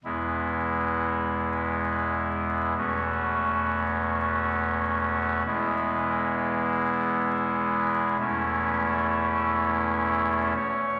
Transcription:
\new Staff \with { instrumentName = "Pipe organ" } { \time 3/4 \key e \major \tempo 4 = 66 <e,, e, gis b e'>2. | <e,, e, a cis' fis'>2. | <e,, e, gis b e'>2. | <e,, e, a cis' e'>2~ <e,, e, a cis' e'>8 cis''8 | }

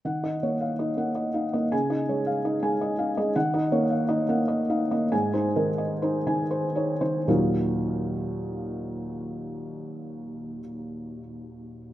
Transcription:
<<
  \new Staff \with { instrumentName = "Felt piano" } { \time 3/4 \key ees \dorian \tempo 4 = 92 << { ges''8 r2 r8 | aes''8 r2 r8 | ges''8 r2 r8 | aes''8 r2 r8 |
<ees, bes, ges bes ees' f'>2.~ | <ees, bes, ges bes ees' f'>2. | } \\ { \tuplet 3/2 { r8 ees''8 des''8 f''8 ees''8 ges''8 ees''8 f''8 ees''8 } | \tuplet 3/2 { r8 ees''8 des''8 f''8 ees''8 aes''8 ees''8 f''8 ees''8 } | \tuplet 3/2 { r8 ees''8 des''8 f''8 ees''8 ges''8 ees''8 f''8 ees''8 } | \tuplet 3/2 { r8 c''8 bes'8 ees''8 c''8 aes''8 c''8 des''8 c''8 } |
r2. | r2. | } >> }
  \new Staff \with { instrumentName = "Felt piano" } { \time 3/4 \key ees \dorian \tuplet 3/2 { ees8 ees'8 bes8~ bes8 ees'8 bes8~ bes8 ees'8 bes8 } | \tuplet 3/2 { des8 ees'8 aes8~ aes8 ees'8 aes8~ aes8 ees'8 aes8 } | \tuplet 3/2 { ees8 ees'8 bes8~ bes8 ees'8 bes8~ bes8 ees'8 bes8 } | \tuplet 3/2 { aes,8 ees'8 ees8~ ees8 ees'8 ees8~ ees8 ees'8 ees8 } |
r2. | r2. | }
>>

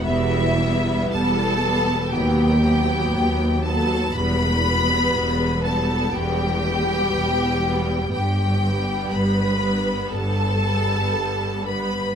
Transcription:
<<
  \new Staff \with { instrumentName = "Violin section" } { \time 4/4 \key e \minor \tempo 4 = 60 e''4 a''4 g''4. a''8 | b''4. a''8 g''2 | \key g \major g''4 b''4 a''4. b''8 | }
  \new Staff \with { instrumentName = "Violin section" } { \time 4/4 \key e \minor e'4 a'4 g'4. a'8 | b'4. a'8 g'2 | \key g \major g'4 b'4 a'4. b'8 | }
  \new Staff \with { instrumentName = "Viola section" } { \time 4/4 \key e \minor <g b>8 <g b>4 <g b>8 <fis b>8 <fis b>4 <fis b>8 | <g b>8 <g b>4 <g b>4 <g b>4 <g b>8 | \key g \major r8 <g b>4 <g b>4 <g b>4 <g b>8 | }
  \new Staff \with { instrumentName = "Cello section" } { \clef bass \time 4/4 \key e \minor e,4 e,4 dis,4 dis,4 | e,4 e,4 e,4 e,4 | \key g \major g,4 g,4 g,4 g,4 | }
  \new Staff \with { instrumentName = "Double bass section" } { \clef bass \time 4/4 \key e \minor e,,4 e,,4 dis,4 dis,4 | e,,4 e,,4 e,,4 e,,4 | \key g \major g,,4 g,,4 g,,4 g,,4 | }
>>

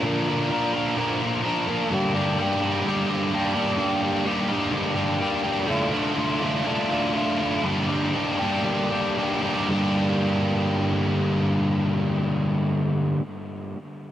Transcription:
\new Staff \with { instrumentName = "Overdriven electric guitar" } { \time 4/4 \key g \minor \tempo 4 = 125 <bes, d f bes d' bes'>8 <f bes d' bes'>8 <f bes d' bes'>8 <f bes d' bes'>8 <bes, d f bes d' bes'>8 <f bes d' bes'>8 <f bes d' bes'>8 <f bes d' bes'>8 | <g, d g bes d' g'>8 <g bes d' g'>8 <g bes d' g'>8 <g bes d' g'>8 <g, d g bes d' g'>8 <g bes d' g'>8 <g bes d' g'>8 <g bes d' g'>8 | <g, d g bes d' g'>8 <g bes d' g'>8 <g bes d' g'>8 <g bes d' g'>8 <g, d g bes d' g'>8 <g bes d' g'>8 <g bes d' g'>8 <g bes d' g'>8 | <d a d' f'>8 <a d' f'>8 <d a d' f'>8 <a d' f'>8 <d a d' f'>8 <a d' f'>8 <d a d' f'>8 <a d' f'>8 |
<g, d g bes d' g'>8 <g bes d' g'>8 <g bes d' g'>8 <g bes d' g'>8 <g, d g bes d' g'>8 <g bes d' g'>8 <g bes d' g'>8 <g bes d' g'>8 | <g, d g bes d' g'>1~ | <g, d g bes d' g'>1 | }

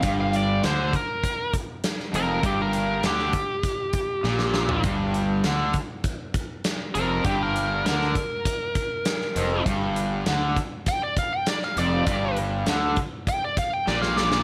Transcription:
<<
  \new Staff \with { instrumentName = "Lead electric guitar" } { \time 4/4 \key g \minor \tempo 4 = 100 f''16 f''16 d''8 c''8 bes'4 r4 bes'8 | g'16 bes'8. g'2. | r2. r8 bes'8 | g'16 bes'8. bes'2. |
r2 g''16 d''16 f''16 g''16 d''16 f''16 d''8~ | d''8 r4. g''16 d''16 f''16 g''16 d''16 f''16 d''8 | }
  \new Staff \with { instrumentName = "Overdriven electric guitar" } { \clef bass \time 4/4 \key g \minor g,4 d8 r2 f,8 | g,4 d8 r4. bes,4 | g,4 d8 r2 f,8 | g,4 d8 r2 f,8 |
g,4 d8 r2 f,8 | g,4 d8 r4. bes,4 | }
  \new Staff \with { instrumentName = "Fingered electric bass" } { \clef bass \time 4/4 \key g \minor g,,4 d,8 r2 f,,8 | g,,4 d,8 r4. bes,,4 | g,,4 d,8 r2 f,,8 | g,,4 d,8 r2 f,,8 |
g,,4 d,8 r2 f,,8 | g,,4 d,8 r4. bes,,4 | }
  \new DrumStaff \with { instrumentName = "Drums" } \drummode { \time 4/4 <hh bd>8 hh8 <hh sn>8 <hh bd>8 <hh bd>8 <hh bd>8 <hh sn>16 sn16 hh8 | <hh bd>8 hh8 <hh sn>16 sn16 <hh bd>8 <hh bd>8 <hh bd>8 sn16 sn16 sn16 tomfh16 | <hh bd>8 hh8 <hh sn>8 <hh bd>8 <hh bd>8 <hh bd>8 <hh sn>8 hh8 | <hh bd>8 hh8 <hh sn>16 sn16 <hh bd>8 <hh bd>8 <hh bd>8 <hh sn>16 sn16 hh8 |
<hh bd>8 hh8 <hh sn>8 <hh bd>8 <hh bd>8 <hh bd>8 <hh sn>16 sn16 hh8 | <hh bd>8 hh8 <hh sn>8 <hh bd>8 <hh bd>8 <hh bd>8 sn16 sn16 sn16 sn16 | }
>>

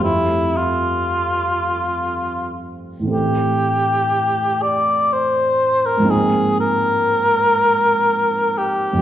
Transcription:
<<
  \new Staff \with { instrumentName = "Cor anglais" } { \time 3/4 \key f \major \tempo 4 = 60 e'8 f'2 r8 | g'4. d''8 c''8. bes'16 | aes'8 bes'2 g'8 | }
  \new Staff \with { instrumentName = "Grand piano" } { \time 3/4 \key f \major <f, g a c' g'>2. | <a, e a c' a'>2. | <aes, f bes c' ees'>2. | }
>>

